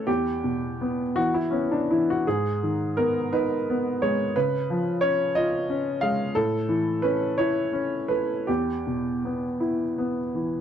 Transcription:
0.07 E2 G4
0.44 B2
0.81 B3
1.16 E3 F#4
1.34 E4
1.50 B3 C#4
1.71 D4
1.91 E3 E4
2.10 F#4
2.27 G#2 G#4
2.63 D#3
2.97 B3 A#4
3.33 D#4 B4
3.70 B3
4.02 G#3 C#5
4.36 C#3 B4
4.70 F3
5.01 C#4 C#5
5.35 F4 D#5
5.69 C#4
6.01 G#3 F5
6.35 A2 A4
6.69 E3
7.02 C#4 B4
7.38 E4 C#5
7.73 C#4
8.08 A3 B4
8.47 E2 G4
8.87 B2
9.25 B3
9.60 E4
9.98 B3
10.35 E3

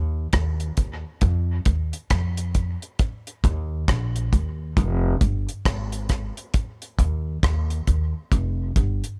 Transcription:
Already playing: D#2
0.33 D#2, kick, cross-stick, closed hi-hat
0.60 closed hi-hat
0.77 D#2, kick, closed hi-hat
1.21 F2, kick, closed hi-hat
1.65 D#2, kick, closed hi-hat
1.93 closed hi-hat
2.10 F2, kick, cross-stick, closed hi-hat
2.37 closed hi-hat
2.55 kick, closed hi-hat
2.82 closed hi-hat
2.99 kick, closed hi-hat
3.27 closed hi-hat
3.44 D#2, kick, closed hi-hat
3.88 A#1, kick, cross-stick, closed hi-hat
4.16 closed hi-hat
4.33 D#2, kick, closed hi-hat
4.77 F1, kick, closed hi-hat
5.21 G1, kick, closed hi-hat
5.49 closed hi-hat
5.65 G#1, kick, cross-stick, closed hi-hat
5.92 closed hi-hat
6.09 kick, cross-stick, closed hi-hat
6.37 closed hi-hat
6.54 kick, closed hi-hat
6.82 closed hi-hat
6.99 D#2, kick, closed hi-hat
7.43 D#2, kick, cross-stick, closed hi-hat
7.70 closed hi-hat
7.87 D#2, kick, closed hi-hat
8.32 F1, kick, closed hi-hat
8.76 G1, kick, closed hi-hat
9.04 closed hi-hat

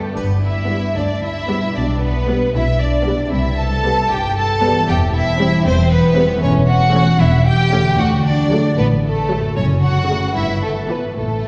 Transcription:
Already playing: A3 B3 A4 D5
0.00 G2 D4
0.08 G4
0.12 B4 D5
0.16 G1 G2 B3, triangle
0.43 E4 E5
0.70 G3 B3
0.96 D2 D4 D5
1.22 E4 E5
1.50 G3 B3
1.58 B2
1.62 D4
1.67 G4
1.71 B4 D5
1.76 B1 B2 D4
2.01 B3 B4
2.28 G3 B3
2.54 B1 B2 E4 E5
2.80 D4 D5
3.06 G3 B3
3.14 C3
3.19 E4
3.23 G4
3.28 B4
3.32 C2 C3 E4 E5
3.58 A4 A5
3.85 G3 B3
4.10 G1 G2 G4 G5
4.36 A4 A5
4.63 G3 B3
4.71 E3
4.75 E4
4.79 G4
4.84 C5
4.88 E1 E2 G4 G5
5.14 E4 E5
5.40 G3 C4
5.65 E1 E2 C4 C5
5.91 B3 B4
6.18 G3 C4
6.26 E3
6.30 E4
6.34 A4
6.39 C#5
6.43 E1 E2 C#4
6.69 F#4 F#5
6.95 A3 C#4
7.20 E1 E2 E4 E5
7.46 G4 G5
7.73 A3 C#4
7.80 D3
7.85 F#4
7.89 A4
7.94 D5
7.98 D2 F#4 F#5
8.25 D4 D5
8.51 F#3 A3
8.77 A1 A2 B3 B4
9.03 A3 A4
9.29 F#3 A3
9.38 F#2
9.42 C#4
9.47 A4
9.51 C#5
9.56 F#1 F#2 C#4 C#5
9.82 F#4 F#5
10.09 C#3 A3
10.18 G2
10.22 B3
10.27 B4
10.31 E5
10.35 G1 G2 E4 E5
10.63 A3 A4
10.90 E3 B3 B4
11.00 A2
11.04 C#4
11.09 A4
11.13 E5
11.17 A1 A2 A3 A4

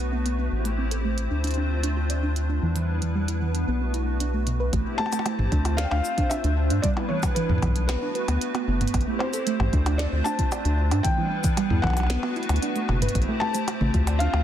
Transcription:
Already playing: B1 A3 B3 D4 F#4 B4
0.12 B3
0.26 B3, closed hi-hat
0.39 B3
0.52 A1 C4 E4 G4 C5
0.65 A3, closed hi-hat
0.78 C4
0.91 A4, closed hi-hat
1.05 A3
1.18 closed hi-hat
1.31 D2 A3 D4 F4
1.44 D4, closed hi-hat
1.47 closed hi-hat
1.51 closed hi-hat
1.54 D4, closed hi-hat
1.83 D4, closed hi-hat
1.97 F4
2.10 D5, closed hi-hat
2.23 D4
2.36 closed hi-hat
2.49 D4
2.62 E2 E3 G3 B3 E4 B4
2.76 E3, closed hi-hat
3.02 E3, closed hi-hat
3.15 G3
3.28 E4, closed hi-hat
3.41 E3
3.55 closed hi-hat
3.68 B1 A3 B3 F#4
3.81 B3
3.94 E4, closed hi-hat
4.20 D4, closed hi-hat
4.34 A3
4.47 B2, closed hi-hat
4.60 B4
4.73 A1 A3 C4 E4 G4 C5, kick, closed hi-hat
4.98 A3 A5, percussion blips
5.06 percussion blips
5.13 A3, closed hi-hat, percussion blips, shaker
5.19 percussion blips
5.26 A3, closed hi-hat, percussion blips
5.39 A1, mid tom
5.52 D2 D4 F4, kick, closed hi-hat
5.65 F4, closed hi-hat, percussion blips
5.77 D5 F5, snare, closed hi-hat
5.84 G5
5.91 D2 D4 F5, percussion blips
6.05 shaker
6.18 D4, kick, closed hi-hat
6.29 D4 E5, closed hi-hat, percussion blips, shaker
6.44 D2 D4, closed hi-hat
6.70 G2 D4, closed hi-hat
6.82 G3 B3 E4 B4 D5, kick, closed hi-hat
6.97 E4, percussion blips
7.09 E3 C#5
7.23 kick, closed hi-hat, percussion blips, shaker
7.35 E3 B4, closed hi-hat
7.49 E2 E3, mid tom
7.58 mid tom
7.62 B1 E3, kick, closed hi-hat, percussion blips
7.67 mid tom
7.76 closed hi-hat
7.87 A3 B3 F#4 B4, snare, closed hi-hat, percussion blips
8.02 D4
8.15 B4, closed hi-hat
8.28 D2 B3, closed hi-hat, percussion blips
8.41 closed hi-hat
8.55 B3, closed hi-hat, percussion blips
8.68 F#1 B3
8.81 B3, closed hi-hat, mid tom
8.88 closed hi-hat
8.94 A1 C4 E4 G4 C5, kick, closed hi-hat, percussion blips
9.01 closed hi-hat
9.07 A3
9.19 C4 C5, percussion blips
9.34 A4, closed hi-hat, shaker
9.47 A3, closed hi-hat
9.60 A1, mid tom, percussion blips
9.73 D2 A3 D4 F4, kick, closed hi-hat
9.86 D4, closed hi-hat, percussion blips
9.98 D4 D5, snare, closed hi-hat
10.12 D2
10.24 D4 A5, percussion blips, shaker
10.39 F4, kick, closed hi-hat
10.52 D5, closed hi-hat, percussion blips, shaker
10.65 D2 D4, closed hi-hat
10.91 G2 D4, closed hi-hat, percussion blips
11.03 E3 G3 B3 D4 E4 B4 G5, kick, closed hi-hat
11.18 E3
11.44 E3, kick, closed hi-hat, shaker
11.57 G3, closed hi-hat, percussion blips
11.70 E2 E4, mid tom
11.82 B1 E3 F#5, kick, percussion blips
11.87 percussion blips
11.90 percussion blips
11.93 closed hi-hat, percussion blips
11.97 percussion blips
12.00 percussion blips
12.03 percussion blips
12.07 A3 B3 F#4, snare, closed hi-hat, percussion blips
12.23 B3, percussion blips
12.36 E4, closed hi-hat
12.43 closed hi-hat
12.49 D2, closed hi-hat, percussion blips
12.56 closed hi-hat
12.62 D4, closed hi-hat
12.76 A3, closed hi-hat
12.89 F#1 B2, percussion blips
13.02 B4, closed hi-hat, mid tom
13.09 closed hi-hat
13.15 A1 C4 E4 G4 C5, kick, closed hi-hat
13.22 closed hi-hat
13.28 A3
13.40 A3 A5, percussion blips
13.55 A3, closed hi-hat, shaker
13.68 closed hi-hat, percussion blips
13.81 A1 A3, mid tom
13.94 D2 D4 F4 C5, kick, closed hi-hat
14.07 D5, closed hi-hat, percussion blips
14.19 D4 F5, closed hi-hat
14.34 D2, percussion blips

